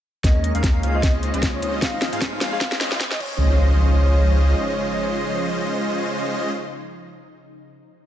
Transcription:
0.24 D#2 G#3 A#3 C#4 D#4 A#4 D#5, kick, snare, closed hi-hat, riser
0.35 C#4
0.44 D#4, closed hi-hat
0.55 D#2 G#3 C#4 D#4 G#4 A#4 F5, closed hi-hat
0.64 A#3, kick, snare, closed hi-hat
0.75 C#4
0.83 C#2 G#3 C#4 D#4 F4 C5 F5, closed hi-hat
0.94 G#4 D#5
1.03 F3, kick, snare, closed hi-hat
1.14 C#2 G#3 C#4 F4 C5 D#5
1.23 D#4, closed hi-hat
1.34 C#2 G#3 C#4 F4 C5 D#5, closed hi-hat
1.43 C4, kick, snare, closed hi-hat
1.54 C#4 C#5
1.62 C#2 G#3 C#4 D#4 F4 C5 D#5, closed hi-hat
1.73 F4
1.82 G#1 G#3 C4 D#4 F4 C5 D#5 F5, kick, snare, closed hi-hat
1.93 D#4
2.02 F4, snare, closed hi-hat
2.13 G#2 G#3 D#4 F4 G#4 C5 F5, closed hi-hat
2.21 C4, kick, snare, closed hi-hat
2.33 D#4
2.41 C#2 G#3 C#4 F4 C5 F5, snare, closed hi-hat
2.52 G#4 F5
2.61 kick, snare, closed hi-hat
2.72 C#2 G#3 C#4 F4 C5 D#5, snare
2.81 D#4, snare, closed hi-hat
2.92 C#2 G#3 C#4 F4 C5 D#5, snare, closed hi-hat
3.00 C4, kick, snare, closed hi-hat
3.11 C#4 D#5, snare
3.20 C#2 C#3 F3 G#3 C#4 D#4 F4 C5 C#5 D#5, kick, crash, impact

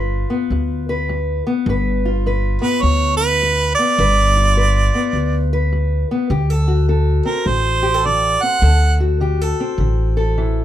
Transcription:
Already playing: G1 G2 F4 B4
0.30 B3
0.50 D2 G2
0.89 B4
1.09 G2
1.47 B3
1.66 G1 G2 B4
2.05 F4
2.26 G2 B4
2.62 B3 B4
2.82 D2 G2 C#5
3.17 F4 B4
3.42 G2
3.75 B3 D5
3.98 G1 G2 B4
4.37 F4
4.57 G2 B4
4.95 B3
5.13 D2 G2
5.53 B4
5.72 G2
6.11 B3
6.30 D2 D3 G4
6.50 A4
6.68 F#4
6.88 D3 A4
7.25 C4 A#4
7.46 A1 D3 C5
7.83 G4
7.94 A4
8.06 D3 D5
8.42 C4 F#5
8.62 D2 D3 A4
9.00 F#4
9.21 D3 G4
9.41 A4
9.60 C4
9.78 A1 D3
10.17 A4
10.38 E3

